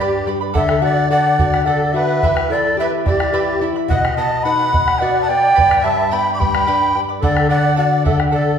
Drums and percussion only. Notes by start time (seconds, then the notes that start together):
0.13 bombo rim
0.27 bombo rim
0.55 bombo rim, bombo low
0.69 bombo rim
0.83 bombo rim
1.26 bombo rim
1.39 bombo low
1.54 bombo rim
1.81 bombo rim
1.96 bombo rim
2.23 bombo low
2.37 bombo rim
3.06 bombo rim, bombo low
3.20 bombo rim
3.34 bombo rim
3.48 bombo rim
3.77 bombo rim
3.90 bombo rim, bombo low
4.05 bombo rim
4.19 bombo rim
4.60 bombo rim
4.74 bombo low
4.88 bombo rim
5.17 bombo rim
5.30 bombo rim
5.58 bombo rim, bombo low
5.71 bombo rim
6.27 bombo rim
6.41 bombo low
6.55 bombo rim
6.82 bombo rim
6.95 bombo rim
7.23 bombo rim, bombo low
7.37 bombo rim
7.51 bombo rim
7.93 bombo rim
8.06 bombo low
8.20 bombo rim
8.48 bombo rim